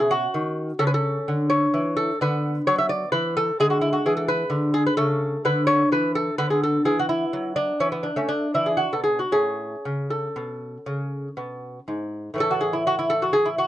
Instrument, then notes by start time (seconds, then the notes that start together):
lute
Already playing: B2 C#4
0.00 G#4
0.11 F#4
0.34 D#3
0.79 C#3 C#4 A4
0.87 B4
0.94 A4
1.28 D3
1.50 C#5
1.74 E3
1.96 A4
2.21 D3 B3 B4
2.67 F#3 C#5
2.78 E5
2.89 D5
3.12 E3 B4
3.37 A4
3.60 D3 G#3 G#4
3.70 F#4
3.81 E4
3.93 F#4
4.06 E3 G#4
4.17 A4
4.28 B4
4.50 D3
4.74 G#4
4.86 B4
4.97 C#3 A3 A4
5.45 D3 B4
5.67 C#5
5.92 E3 B4
6.15 A4
6.38 D3 B3 B4
6.50 G#4
6.63 A4
6.85 E3 G#4
6.99 F#4
7.09 E4
7.33 F#3
7.56 D4
7.80 E3 C#4
7.92 B3
8.03 D4
8.16 A3 C#4
8.29 D4
8.54 E3 D4 E4
8.66 G#4
8.77 F#4
8.93 B2 A4
9.04 G#4
9.19 F#4
9.32 A2 C#4 G#4
9.85 C#3
10.10 A4
10.36 B2
10.86 C#3
11.37 B2
11.88 G#2
12.34 A2 E3
12.38 C#4 A4
12.51 F#4
12.61 G#4
12.73 E4
12.87 F#4
12.99 E4
13.10 A4
13.22 F#4
13.33 G#4
13.45 E4
13.58 F#4